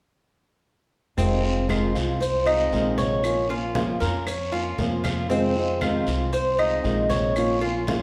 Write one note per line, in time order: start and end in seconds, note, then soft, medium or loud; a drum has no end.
1.17 1.91 F1 medium
1.17 1.42 C3 medium
1.17 1.42 D#3 medium
1.17 1.43 G#3 medium
1.17 1.68 C4 medium
1.17 1.43 C4 medium
1.17 1.42 F4 medium
1.17 high conga soft
1.17 long guiro medium
1.17 maracas medium
1.43 1.68 G#3 soft
1.43 1.68 C4 soft
1.43 1.68 F4 soft
1.43 high conga soft
1.43 maracas soft
1.69 1.94 C3 medium
1.69 1.94 D#3 medium
1.69 1.94 G#3 medium
1.69 1.94 C4 medium
1.69 2.20 F4 medium
1.69 1.93 F4 medium
1.69 high conga medium
1.69 short guiro medium
1.69 claves medium
1.69 maracas soft
1.94 2.68 C2 medium
1.94 2.20 G#3 soft
1.94 2.20 C4 soft
1.94 2.20 F4 soft
1.94 high conga soft
1.94 short guiro medium
1.94 maracas medium
2.20 2.46 C5 medium
2.20 muted nylon-string guitar stroke medium
2.20 high conga soft
2.20 long guiro medium
2.20 maracas medium
2.46 2.72 G#3 soft
2.46 2.72 C4 soft
2.46 2.96 D#4 medium
2.46 2.71 F4 soft
2.46 high conga soft
2.46 claves medium
2.46 maracas soft
2.72 3.95 A#1 medium
2.72 3.23 C3 medium
2.72 3.23 D#3 medium
2.72 3.23 G#3 medium
2.72 3.24 C4 medium
2.72 3.24 F4 medium
2.72 high conga soft
2.72 short guiro medium
2.72 maracas soft
2.98 3.48 C#5 medium
2.98 high conga medium
2.98 short guiro medium
2.98 maracas medium
3.23 3.49 F3 medium
3.23 3.49 A#3 medium
3.23 3.48 C#4 medium
3.23 3.47 F4 medium
3.23 high conga soft
3.23 long guiro medium
3.23 claves medium
3.23 maracas medium
3.48 3.74 A#3 soft
3.48 3.74 C#4 soft
3.48 3.74 F4 soft
3.48 4.00 F4 medium
3.48 high conga soft
3.48 maracas soft
3.74 4.00 F3 medium
3.74 4.00 A#3 medium
3.74 4.00 C#4 medium
3.74 4.00 F4 medium
3.74 high conga medium
3.74 short guiro medium
3.74 maracas soft
4.00 4.74 F2 medium
4.00 4.26 A#3 soft
4.00 4.26 C#4 soft
4.00 4.26 F4 soft
4.00 4.26 A#4 medium
4.00 high conga soft
4.00 short guiro medium
4.00 maracas medium
4.27 4.52 C#5 medium
4.27 muted nylon-string guitar stroke medium
4.27 high conga soft
4.27 long guiro medium
4.27 claves medium
4.27 maracas medium
4.52 4.77 A#3 soft
4.52 4.78 C#4 soft
4.52 4.77 F4 soft
4.52 5.02 F4 medium
4.52 high conga soft
4.52 maracas soft
4.78 6.01 F2 medium
4.78 5.29 F3 medium
4.78 5.29 A#3 medium
4.78 5.29 C#4 medium
4.78 5.30 F4 medium
4.78 high conga medium
4.78 short guiro medium
4.78 maracas soft
5.04 5.29 F4 medium
5.04 high conga medium
5.04 short guiro medium
5.04 claves medium
5.04 maracas medium
5.29 5.54 C3 medium
5.29 5.55 D#3 medium
5.29 5.55 G#3 medium
5.29 5.80 C4 medium
5.29 5.55 C4 medium
5.29 5.55 F4 medium
5.29 high conga soft
5.29 long guiro medium
5.29 maracas medium
5.56 5.81 G#3 soft
5.56 5.81 C4 soft
5.56 5.80 F4 soft
5.56 high conga soft
5.56 maracas soft
5.81 6.06 C3 medium
5.81 6.06 D#3 medium
5.81 6.07 G#3 medium
5.81 6.07 C4 medium
5.81 6.31 F4 medium
5.81 6.06 F4 medium
5.81 high conga medium
5.81 short guiro medium
5.81 claves medium
5.81 maracas soft
6.07 6.80 C2 medium
6.07 6.32 G#3 soft
6.07 6.32 C4 soft
6.07 6.32 F4 soft
6.07 high conga soft
6.07 short guiro medium
6.07 maracas medium
6.32 6.58 C5 medium
6.32 muted nylon-string guitar stroke medium
6.32 high conga soft
6.32 long guiro medium
6.32 maracas medium
6.58 6.83 G#3 soft
6.58 6.84 C4 soft
6.58 7.09 D#4 medium
6.58 6.83 F4 soft
6.58 high conga soft
6.58 claves medium
6.58 maracas soft
6.83 8.02 A#1 medium
6.83 7.34 C3 medium
6.83 7.35 D#3 medium
6.83 7.35 G#3 medium
6.83 7.35 C4 medium
6.83 7.35 F4 medium
6.83 high conga soft
6.83 short guiro medium
6.83 maracas soft
7.10 7.60 C#5 medium
7.10 high conga medium
7.10 short guiro medium
7.10 maracas medium
7.36 7.61 F3 medium
7.36 7.61 A#3 medium
7.36 7.61 C#4 medium
7.36 7.60 F4 medium
7.36 high conga soft
7.36 long guiro medium
7.36 claves medium
7.36 maracas medium
7.61 7.87 A#3 soft
7.61 7.87 C#4 soft
7.61 8.02 F4 medium
7.61 7.86 F4 soft
7.61 high conga soft
7.61 maracas soft
7.87 8.02 F3 medium
7.87 8.02 A#3 medium
7.87 8.02 C#4 medium
7.87 8.02 F4 medium
7.87 high conga medium
7.87 short guiro medium
7.87 maracas soft